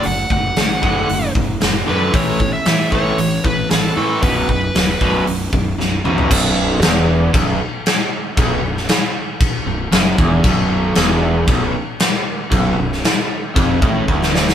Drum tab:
CC |----------------|----------------|----------------|x---x---x---x---|
HH |o---o---o---o---|o---o---o---o---|o---o---o-------|----------------|
SD |----o-------o---|----o-------o---|----o-------o---|----o-------o---|
T2 |----------------|----------------|--------------o-|----------------|
FT |----------------|----------------|---------------o|----------------|
BD |--o---o---o-----|o-o---o---o-----|o-o---o---o-----|o-------o-------|

CC |x---x---x---x---|x---x---x---x---|x---x---x-------|
HH |----------------|----------------|----------------|
SD |---oo-------o---|----o-------o---|---oo--------ooo|
T2 |----------------|----------------|----------------|
FT |----------------|----------------|----------------|
BD |o-------o-----o-|o-------o-------|o-------o-o-o---|